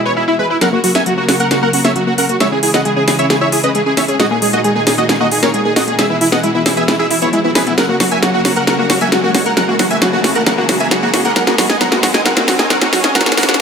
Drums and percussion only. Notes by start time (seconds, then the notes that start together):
0.61 snare, closed hi-hat
0.84 open hi-hat
0.95 snare, closed hi-hat
1.06 closed hi-hat
1.29 snare, open hi-hat
1.40 closed hi-hat
1.51 snare, closed hi-hat
1.73 open hi-hat
1.85 snare, closed hi-hat
1.96 closed hi-hat
2.18 open hi-hat
2.29 closed hi-hat
2.40 snare, closed hi-hat
2.63 open hi-hat
2.74 snare, closed hi-hat
2.85 closed hi-hat
3.08 snare, open hi-hat
3.19 closed hi-hat
3.30 snare, closed hi-hat
3.52 open hi-hat
3.64 closed hi-hat
3.75 closed hi-hat
3.97 snare, open hi-hat
4.08 closed hi-hat
4.20 snare, closed hi-hat
4.42 open hi-hat
4.53 closed hi-hat
4.64 closed hi-hat
4.87 snare, open hi-hat
4.98 closed hi-hat
5.09 snare, closed hi-hat
5.32 open hi-hat
5.43 snare, closed hi-hat
5.54 closed hi-hat
5.76 snare, open hi-hat
5.88 closed hi-hat
5.99 snare, closed hi-hat
6.21 open hi-hat
6.32 snare, closed hi-hat
6.43 closed hi-hat
6.66 snare, open hi-hat
6.77 closed hi-hat
6.88 snare, closed hi-hat
7.11 open hi-hat
7.22 closed hi-hat
7.33 closed hi-hat
7.55 snare, open hi-hat
7.67 closed hi-hat
7.78 snare, closed hi-hat
8.00 snare, open hi-hat
8.11 closed hi-hat
8.23 snare, closed hi-hat
8.45 snare, open hi-hat
8.56 closed hi-hat
8.67 snare, closed hi-hat
8.90 snare, open hi-hat
9.01 closed hi-hat
9.12 snare, closed hi-hat
9.35 snare, open hi-hat
9.46 closed hi-hat
9.57 snare, closed hi-hat
9.79 snare, open hi-hat
9.91 closed hi-hat
10.02 snare, closed hi-hat
10.24 snare, open hi-hat
10.35 closed hi-hat
10.46 snare, closed hi-hat
10.69 snare, open hi-hat
10.80 closed hi-hat
10.91 snare, closed hi-hat
11.14 snare, open hi-hat
11.25 closed hi-hat
11.36 snare, closed hi-hat
11.47 snare
11.58 snare, open hi-hat
11.70 snare, closed hi-hat
11.81 snare, closed hi-hat
11.92 snare
12.03 snare, open hi-hat
12.14 snare, closed hi-hat
12.26 snare, closed hi-hat
12.37 snare
12.48 snare, open hi-hat
12.59 snare, closed hi-hat
12.70 snare, closed hi-hat
12.82 snare
12.93 snare, open hi-hat
13.04 snare, closed hi-hat
13.15 snare, closed hi-hat
13.21 snare
13.26 snare
13.32 snare
13.37 snare, open hi-hat
13.43 snare
13.49 snare, closed hi-hat
13.54 snare